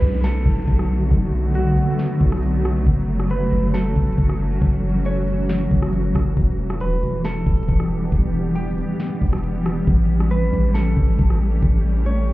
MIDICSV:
0, 0, Header, 1, 6, 480
1, 0, Start_track
1, 0, Key_signature, 2, "minor"
1, 0, Tempo, 437956
1, 1221, Time_signature, 4, 2, 24, 8
1, 13515, End_track
2, 0, Start_track
2, 0, Title_t, "Clean electric guitar"
2, 0, Program_c, 0, 27
2, 0, Note_on_c, 0, 71, 75
2, 234, Note_off_c, 0, 71, 0
2, 262, Note_on_c, 0, 69, 85
2, 1178, Note_off_c, 0, 69, 0
2, 1700, Note_on_c, 0, 66, 78
2, 2617, Note_off_c, 0, 66, 0
2, 3626, Note_on_c, 0, 71, 77
2, 4075, Note_off_c, 0, 71, 0
2, 4097, Note_on_c, 0, 69, 89
2, 5015, Note_off_c, 0, 69, 0
2, 5545, Note_on_c, 0, 73, 76
2, 6939, Note_off_c, 0, 73, 0
2, 7464, Note_on_c, 0, 71, 76
2, 7914, Note_off_c, 0, 71, 0
2, 7947, Note_on_c, 0, 69, 90
2, 8860, Note_off_c, 0, 69, 0
2, 9375, Note_on_c, 0, 67, 84
2, 10294, Note_off_c, 0, 67, 0
2, 11300, Note_on_c, 0, 71, 80
2, 11752, Note_off_c, 0, 71, 0
2, 11774, Note_on_c, 0, 69, 87
2, 12694, Note_off_c, 0, 69, 0
2, 13219, Note_on_c, 0, 73, 73
2, 13515, Note_off_c, 0, 73, 0
2, 13515, End_track
3, 0, Start_track
3, 0, Title_t, "Ambient pad"
3, 0, Program_c, 1, 92
3, 0, Note_on_c, 1, 50, 85
3, 0, Note_on_c, 1, 54, 76
3, 0, Note_on_c, 1, 57, 80
3, 0, Note_on_c, 1, 59, 79
3, 0, Note_on_c, 1, 66, 93
3, 3102, Note_off_c, 1, 59, 0
3, 3102, Note_off_c, 1, 66, 0
3, 3103, Note_off_c, 1, 50, 0
3, 3141, Note_on_c, 1, 61, 79
3, 3142, Note_on_c, 1, 52, 84
3, 3142, Note_on_c, 1, 66, 97
3, 6937, Note_off_c, 1, 54, 0
3, 6937, Note_off_c, 1, 57, 0
3, 6943, Note_off_c, 1, 61, 0
3, 6943, Note_off_c, 1, 66, 0
3, 6980, Note_on_c, 1, 55, 77
3, 6980, Note_on_c, 1, 62, 77
3, 6980, Note_on_c, 1, 67, 95
3, 6981, Note_on_c, 1, 59, 78
3, 8881, Note_off_c, 1, 62, 0
3, 8902, Note_on_c, 1, 61, 77
3, 10782, Note_off_c, 1, 67, 0
3, 10783, Note_off_c, 1, 59, 0
3, 10819, Note_on_c, 1, 57, 78
3, 10820, Note_on_c, 1, 67, 98
3, 13515, Note_off_c, 1, 52, 0
3, 13515, Note_off_c, 1, 55, 0
3, 13515, Note_off_c, 1, 57, 0
3, 13515, Note_off_c, 1, 61, 0
3, 13515, Note_off_c, 1, 67, 0
3, 13515, End_track
4, 0, Start_track
4, 0, Title_t, "808-style bass"
4, 0, Program_c, 2, 38
4, 22, Note_on_c, 2, 35, 103
4, 482, Note_off_c, 2, 35, 0
4, 501, Note_on_c, 2, 35, 107
4, 732, Note_off_c, 2, 35, 0
4, 745, Note_on_c, 2, 35, 109
4, 1204, Note_off_c, 2, 35, 0
4, 1222, Note_on_c, 2, 35, 113
4, 1913, Note_off_c, 2, 35, 0
4, 2422, Note_on_c, 2, 35, 103
4, 3113, Note_off_c, 2, 35, 0
4, 3142, Note_on_c, 2, 30, 110
4, 3833, Note_off_c, 2, 30, 0
4, 3861, Note_on_c, 2, 30, 100
4, 4322, Note_off_c, 2, 30, 0
4, 4342, Note_on_c, 2, 30, 101
4, 4572, Note_off_c, 2, 30, 0
4, 4585, Note_on_c, 2, 30, 108
4, 5044, Note_off_c, 2, 30, 0
4, 5061, Note_on_c, 2, 30, 111
4, 6217, Note_off_c, 2, 30, 0
4, 6262, Note_on_c, 2, 30, 105
4, 6722, Note_off_c, 2, 30, 0
4, 6740, Note_on_c, 2, 30, 105
4, 6971, Note_off_c, 2, 30, 0
4, 6982, Note_on_c, 2, 28, 107
4, 7462, Note_on_c, 2, 26, 98
4, 7478, Note_off_c, 2, 28, 0
4, 7581, Note_on_c, 2, 28, 103
4, 7597, Note_off_c, 2, 26, 0
4, 7695, Note_off_c, 2, 28, 0
4, 7702, Note_on_c, 2, 28, 106
4, 8162, Note_off_c, 2, 28, 0
4, 8182, Note_on_c, 2, 28, 105
4, 8412, Note_off_c, 2, 28, 0
4, 8424, Note_on_c, 2, 28, 106
4, 8884, Note_off_c, 2, 28, 0
4, 8902, Note_on_c, 2, 28, 114
4, 9593, Note_off_c, 2, 28, 0
4, 10102, Note_on_c, 2, 28, 104
4, 10793, Note_off_c, 2, 28, 0
4, 10822, Note_on_c, 2, 33, 116
4, 11513, Note_off_c, 2, 33, 0
4, 11541, Note_on_c, 2, 33, 99
4, 12002, Note_off_c, 2, 33, 0
4, 12022, Note_on_c, 2, 33, 102
4, 12252, Note_off_c, 2, 33, 0
4, 12265, Note_on_c, 2, 33, 108
4, 12724, Note_off_c, 2, 33, 0
4, 12742, Note_on_c, 2, 33, 113
4, 13515, Note_off_c, 2, 33, 0
4, 13515, End_track
5, 0, Start_track
5, 0, Title_t, "Downlifter"
5, 0, Program_c, 3, 103
5, 0, Note_on_c, 3, 60, 88
5, 3141, Note_off_c, 3, 60, 0
5, 13515, End_track
6, 0, Start_track
6, 0, Title_t, "Drums"
6, 25, Note_on_c, 9, 42, 67
6, 134, Note_off_c, 9, 42, 0
6, 259, Note_on_c, 9, 42, 78
6, 262, Note_on_c, 9, 38, 116
6, 368, Note_off_c, 9, 42, 0
6, 372, Note_off_c, 9, 38, 0
6, 501, Note_on_c, 9, 42, 45
6, 502, Note_on_c, 9, 36, 95
6, 561, Note_off_c, 9, 42, 0
6, 561, Note_on_c, 9, 42, 52
6, 611, Note_off_c, 9, 36, 0
6, 621, Note_off_c, 9, 42, 0
6, 621, Note_on_c, 9, 42, 61
6, 682, Note_off_c, 9, 42, 0
6, 682, Note_on_c, 9, 42, 70
6, 740, Note_off_c, 9, 42, 0
6, 740, Note_on_c, 9, 42, 70
6, 745, Note_on_c, 9, 36, 98
6, 850, Note_off_c, 9, 42, 0
6, 854, Note_off_c, 9, 36, 0
6, 868, Note_on_c, 9, 37, 88
6, 977, Note_off_c, 9, 37, 0
6, 1221, Note_on_c, 9, 36, 122
6, 1221, Note_on_c, 9, 42, 77
6, 1331, Note_off_c, 9, 36, 0
6, 1331, Note_off_c, 9, 42, 0
6, 1697, Note_on_c, 9, 42, 85
6, 1807, Note_off_c, 9, 42, 0
6, 1944, Note_on_c, 9, 42, 64
6, 2054, Note_off_c, 9, 42, 0
6, 2180, Note_on_c, 9, 42, 75
6, 2183, Note_on_c, 9, 38, 120
6, 2289, Note_off_c, 9, 42, 0
6, 2293, Note_off_c, 9, 38, 0
6, 2422, Note_on_c, 9, 36, 95
6, 2422, Note_on_c, 9, 42, 43
6, 2482, Note_off_c, 9, 42, 0
6, 2482, Note_on_c, 9, 42, 52
6, 2532, Note_off_c, 9, 36, 0
6, 2542, Note_off_c, 9, 42, 0
6, 2542, Note_on_c, 9, 42, 60
6, 2545, Note_on_c, 9, 37, 95
6, 2602, Note_off_c, 9, 42, 0
6, 2602, Note_on_c, 9, 42, 69
6, 2654, Note_off_c, 9, 37, 0
6, 2661, Note_off_c, 9, 42, 0
6, 2661, Note_on_c, 9, 42, 71
6, 2771, Note_off_c, 9, 42, 0
6, 2905, Note_on_c, 9, 37, 100
6, 3015, Note_off_c, 9, 37, 0
6, 3142, Note_on_c, 9, 36, 121
6, 3142, Note_on_c, 9, 42, 76
6, 3251, Note_off_c, 9, 42, 0
6, 3252, Note_off_c, 9, 36, 0
6, 3503, Note_on_c, 9, 37, 91
6, 3613, Note_off_c, 9, 37, 0
6, 3618, Note_on_c, 9, 42, 84
6, 3728, Note_off_c, 9, 42, 0
6, 3865, Note_on_c, 9, 42, 65
6, 3975, Note_off_c, 9, 42, 0
6, 4100, Note_on_c, 9, 42, 77
6, 4103, Note_on_c, 9, 38, 116
6, 4209, Note_off_c, 9, 42, 0
6, 4212, Note_off_c, 9, 38, 0
6, 4342, Note_on_c, 9, 36, 93
6, 4342, Note_on_c, 9, 42, 42
6, 4402, Note_off_c, 9, 42, 0
6, 4402, Note_on_c, 9, 42, 50
6, 4452, Note_off_c, 9, 36, 0
6, 4462, Note_off_c, 9, 42, 0
6, 4462, Note_on_c, 9, 42, 60
6, 4522, Note_off_c, 9, 42, 0
6, 4522, Note_on_c, 9, 42, 68
6, 4579, Note_off_c, 9, 42, 0
6, 4579, Note_on_c, 9, 42, 71
6, 4584, Note_on_c, 9, 36, 101
6, 4689, Note_off_c, 9, 42, 0
6, 4694, Note_off_c, 9, 36, 0
6, 4707, Note_on_c, 9, 37, 86
6, 4816, Note_off_c, 9, 37, 0
6, 5061, Note_on_c, 9, 42, 75
6, 5062, Note_on_c, 9, 36, 126
6, 5171, Note_off_c, 9, 36, 0
6, 5171, Note_off_c, 9, 42, 0
6, 5538, Note_on_c, 9, 42, 85
6, 5647, Note_off_c, 9, 42, 0
6, 5785, Note_on_c, 9, 42, 64
6, 5895, Note_off_c, 9, 42, 0
6, 6019, Note_on_c, 9, 42, 77
6, 6022, Note_on_c, 9, 38, 119
6, 6129, Note_off_c, 9, 42, 0
6, 6132, Note_off_c, 9, 38, 0
6, 6261, Note_on_c, 9, 42, 67
6, 6262, Note_on_c, 9, 36, 95
6, 6370, Note_off_c, 9, 42, 0
6, 6371, Note_off_c, 9, 36, 0
6, 6383, Note_on_c, 9, 37, 97
6, 6492, Note_off_c, 9, 37, 0
6, 6500, Note_on_c, 9, 42, 73
6, 6609, Note_off_c, 9, 42, 0
6, 6741, Note_on_c, 9, 36, 87
6, 6746, Note_on_c, 9, 37, 103
6, 6850, Note_off_c, 9, 36, 0
6, 6855, Note_off_c, 9, 37, 0
6, 6981, Note_on_c, 9, 42, 75
6, 6982, Note_on_c, 9, 36, 126
6, 7091, Note_off_c, 9, 36, 0
6, 7091, Note_off_c, 9, 42, 0
6, 7343, Note_on_c, 9, 37, 96
6, 7453, Note_off_c, 9, 37, 0
6, 7458, Note_on_c, 9, 42, 86
6, 7567, Note_off_c, 9, 42, 0
6, 7704, Note_on_c, 9, 42, 62
6, 7814, Note_off_c, 9, 42, 0
6, 7939, Note_on_c, 9, 42, 78
6, 7942, Note_on_c, 9, 38, 118
6, 8049, Note_off_c, 9, 42, 0
6, 8052, Note_off_c, 9, 38, 0
6, 8181, Note_on_c, 9, 42, 43
6, 8182, Note_on_c, 9, 36, 97
6, 8242, Note_off_c, 9, 42, 0
6, 8242, Note_on_c, 9, 42, 52
6, 8292, Note_off_c, 9, 36, 0
6, 8301, Note_off_c, 9, 42, 0
6, 8301, Note_on_c, 9, 42, 63
6, 8361, Note_off_c, 9, 42, 0
6, 8361, Note_on_c, 9, 42, 72
6, 8419, Note_off_c, 9, 42, 0
6, 8419, Note_on_c, 9, 42, 70
6, 8425, Note_on_c, 9, 36, 102
6, 8529, Note_off_c, 9, 42, 0
6, 8534, Note_off_c, 9, 36, 0
6, 8547, Note_on_c, 9, 37, 86
6, 8656, Note_off_c, 9, 37, 0
6, 8901, Note_on_c, 9, 42, 77
6, 8902, Note_on_c, 9, 36, 121
6, 9011, Note_off_c, 9, 42, 0
6, 9012, Note_off_c, 9, 36, 0
6, 9378, Note_on_c, 9, 42, 87
6, 9487, Note_off_c, 9, 42, 0
6, 9625, Note_on_c, 9, 42, 63
6, 9734, Note_off_c, 9, 42, 0
6, 9859, Note_on_c, 9, 42, 76
6, 9862, Note_on_c, 9, 38, 116
6, 9968, Note_off_c, 9, 42, 0
6, 9972, Note_off_c, 9, 38, 0
6, 10102, Note_on_c, 9, 36, 99
6, 10102, Note_on_c, 9, 42, 43
6, 10161, Note_off_c, 9, 42, 0
6, 10161, Note_on_c, 9, 42, 52
6, 10212, Note_off_c, 9, 36, 0
6, 10221, Note_off_c, 9, 42, 0
6, 10221, Note_on_c, 9, 42, 61
6, 10224, Note_on_c, 9, 37, 96
6, 10282, Note_off_c, 9, 42, 0
6, 10282, Note_on_c, 9, 42, 72
6, 10333, Note_off_c, 9, 37, 0
6, 10340, Note_off_c, 9, 42, 0
6, 10340, Note_on_c, 9, 42, 75
6, 10450, Note_off_c, 9, 42, 0
6, 10585, Note_on_c, 9, 37, 101
6, 10695, Note_off_c, 9, 37, 0
6, 10821, Note_on_c, 9, 42, 77
6, 10822, Note_on_c, 9, 36, 123
6, 10931, Note_off_c, 9, 36, 0
6, 10931, Note_off_c, 9, 42, 0
6, 11183, Note_on_c, 9, 37, 92
6, 11292, Note_off_c, 9, 37, 0
6, 11298, Note_on_c, 9, 42, 85
6, 11407, Note_off_c, 9, 42, 0
6, 11544, Note_on_c, 9, 42, 64
6, 11654, Note_off_c, 9, 42, 0
6, 11779, Note_on_c, 9, 42, 75
6, 11782, Note_on_c, 9, 38, 117
6, 11889, Note_off_c, 9, 42, 0
6, 11892, Note_off_c, 9, 38, 0
6, 12021, Note_on_c, 9, 42, 42
6, 12022, Note_on_c, 9, 36, 98
6, 12082, Note_off_c, 9, 42, 0
6, 12082, Note_on_c, 9, 42, 52
6, 12131, Note_off_c, 9, 36, 0
6, 12141, Note_off_c, 9, 42, 0
6, 12141, Note_on_c, 9, 42, 63
6, 12201, Note_off_c, 9, 42, 0
6, 12201, Note_on_c, 9, 42, 68
6, 12260, Note_off_c, 9, 42, 0
6, 12260, Note_on_c, 9, 42, 70
6, 12265, Note_on_c, 9, 36, 98
6, 12370, Note_off_c, 9, 42, 0
6, 12374, Note_off_c, 9, 36, 0
6, 12387, Note_on_c, 9, 37, 85
6, 12496, Note_off_c, 9, 37, 0
6, 12741, Note_on_c, 9, 36, 125
6, 12741, Note_on_c, 9, 42, 77
6, 12850, Note_off_c, 9, 42, 0
6, 12851, Note_off_c, 9, 36, 0
6, 13218, Note_on_c, 9, 42, 83
6, 13328, Note_off_c, 9, 42, 0
6, 13465, Note_on_c, 9, 42, 63
6, 13515, Note_off_c, 9, 42, 0
6, 13515, End_track
0, 0, End_of_file